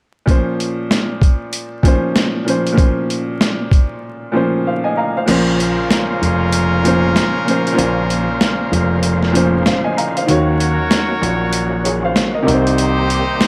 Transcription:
0.26 A#2 F3 C#4, kick, closed hi-hat
0.30 C5
0.60 closed hi-hat
0.91 snare, closed hi-hat
1.22 kick, closed hi-hat
1.53 closed hi-hat
1.83 A#2 F3 C#4, kick, closed hi-hat
1.88 C5
2.16 snare, closed hi-hat
2.45 A#2 F3 C#4, closed hi-hat
2.50 C5
2.67 closed hi-hat
2.72 A#2 F3 C#4
2.77 C5, kick, closed hi-hat
3.10 closed hi-hat
3.41 snare, closed hi-hat
3.71 kick, closed hi-hat
4.32 A#2 F3 C#4
4.37 C5
4.67 C5 F5
4.84 D#5 G#5
4.97 F5 A#5
5.17 C5 F5
5.26 A#1 A#2 C#3 F3 A#3 C#4 F4 A#4 C5, closed hi-hat, crash
5.31 C5
5.60 closed hi-hat
5.91 snare, closed hi-hat
6.22 F1, closed hi-hat
6.52 closed hi-hat
6.83 A#2 F3 C#4, closed hi-hat
6.88 C5
7.16 snare, closed hi-hat
7.45 A#2 F3 C#4, closed hi-hat
7.50 C5
7.67 closed hi-hat
7.72 A#2 F3 C#4
7.77 A#1 C5, closed hi-hat
8.10 closed hi-hat
8.41 snare, closed hi-hat
8.72 F1, closed hi-hat
9.03 closed hi-hat
9.23 snare
9.32 A#2 F3 C#4, closed hi-hat
9.37 C5
9.66 C5 F5, snare, closed hi-hat
9.84 D#5 G#5
9.97 F5 A#5, closed hi-hat
10.17 C5 F5, closed hi-hat
10.26 D#2 D#3 F#3 A#3 C#4 F#4 A#4 C#5, closed hi-hat
10.31 C#5
10.60 closed hi-hat
10.91 snare, closed hi-hat
11.22 A#1, closed hi-hat
11.53 closed hi-hat
11.84 G#4 C#5, closed hi-hat
12.05 C5 F5
12.16 snare, closed hi-hat
12.35 A#4 D#5
12.43 C3 D#3 G3 A#3 C4 D#4 G4 C5
12.47 C2 A#4, closed hi-hat
12.54 C5
12.67 closed hi-hat
12.78 closed hi-hat
13.10 closed hi-hat
13.41 snare, closed hi-hat

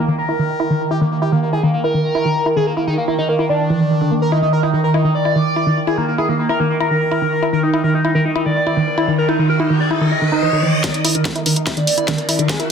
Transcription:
Already playing: D#3
0.08 D#3 A#3
0.18 A#4
0.29 E4
0.39 D#3
0.60 E4
0.70 D#3
0.91 E4 G4
1.01 D#3 A#3
1.11 A#3
1.22 E4 G4
1.32 D#3 A#3
1.42 A#3
1.53 E4 G#4
1.63 D#3 A#3
1.74 A#3
1.84 E4 A#4
1.94 D#3
2.15 E4
2.25 D#3
2.46 E4
2.56 D#3 G#4
2.67 A#3
2.77 A#3 E4
2.87 D#3 D#4
2.98 A#3
3.08 A#3 E4
3.18 D#3 D#4
3.29 A#3
3.39 A#3 E4
3.49 D#3 D4
3.70 E3
3.80 D#3
3.91 D#3
4.01 D3
4.11 A#3
4.22 A#4
4.32 D#4 E4
4.42 D#3 D#4
4.53 A#4
4.63 D#4 E4
4.73 D#3 D#4
4.84 A#4
4.94 D#4 E4
5.05 D#3 D#4
5.15 D5
5.25 E4
5.36 D#3
5.56 E4
5.67 D#3
5.87 E4 G#4
5.98 D#3 A#3
6.08 A#3
6.18 E4 G#4
6.29 D#3 A#3
6.39 A#3
6.49 E4 A#4
6.60 D#3 A#3
6.70 A#3
6.80 E4 A#4
6.91 D#3
7.11 E4
7.22 D#3
7.42 E4
7.53 D#3 A#4, riser
7.63 D#4
7.74 D#4 E4
7.84 D#3 A#4
7.94 D#4
8.05 D#4 E4
8.15 D#3 A#4
8.25 D#4
8.36 D#4 E4
8.46 D#3 D5
8.67 E4
8.77 D#3
8.98 E4
9.08 D#3
9.18 A#4
9.29 D#4 E4
9.39 D#3 D#4
9.49 A#4
9.60 D#4 E4
9.70 D#3 D#4
9.80 D5
9.91 D#4 E4
10.01 D#3 D#4
10.11 D#5
10.22 D#3
10.32 D#4
10.42 E3
10.53 D#3
10.63 E3
10.84 D#3 A#4, kick, snare, closed hi-hat, riser
10.94 D#4, closed hi-hat
11.05 D#4 E4, open hi-hat
11.15 D#3 A#4, closed hi-hat
11.25 A#3 D#4, kick, snare, closed hi-hat
11.36 A#3 D#4 E4, closed hi-hat
11.46 D#3 A#4, open hi-hat
11.56 D#4, closed hi-hat
11.67 E4, kick, snare, closed hi-hat
11.77 D#3 D5, closed hi-hat
11.87 open hi-hat
11.98 E4, closed hi-hat
12.08 D#3 A#3, kick, snare, closed hi-hat
12.18 closed hi-hat
12.29 E4, open hi-hat
12.39 D#3, closed hi-hat
12.49 G#4, kick, snare, closed hi-hat
12.60 A#3 E4, closed hi-hat

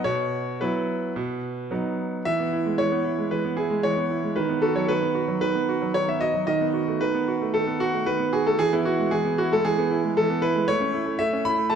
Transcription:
0.04 B2 C#5
0.61 F#3 B3 E4 B4
1.16 B2
1.71 F#3 B3 D#4
2.25 E3 E5
2.40 B3
2.53 E4
2.66 G#3
2.78 E3 C#5
2.92 B3
3.05 E4
3.18 G#3
3.31 E3 B4
3.44 B3
3.57 E4 G#4
3.70 G#3
3.83 E3 C#5
3.97 B3
4.11 E4
4.24 G#3
4.36 D#3 B4
4.49 B3
4.62 F#4 A4
4.75 F#3 C#5
4.88 D#3 B4
5.02 B3
5.15 F#4
5.28 F#3
5.41 D#3 B4
5.55 B3
5.69 F#4
5.82 F#3
5.94 D#3 C#5
6.08 B3 E5
6.21 F#4 D#5
6.34 F#3
6.47 D#3 D#5
6.61 B3
6.74 F#4
6.88 A3
7.01 D#3 B4
7.14 B3
7.28 F#4
7.41 A3
7.54 D#3 A4
7.67 B3
7.80 F#4
7.94 A3
8.06 D#3 B4
8.19 B3
8.33 F#4 G#4
8.46 A3 A4
8.59 E3 G#4
8.73 B3 E4
8.85 E4 F#4
8.99 G#3
9.11 E3 G#4
9.25 B3
9.38 E4 F#4
9.52 G#3 A4
9.65 E3 G#4
9.78 B3
9.91 E4
10.04 G#3
10.17 E3 A4
10.30 B3
10.42 E4 B4
10.55 G#3
10.68 A3 C#5
10.80 C#4
10.93 E4
11.06 A3
11.19 A3 E5
11.33 C#4
11.45 E4 B5
11.58 A3
11.70 A3 A5

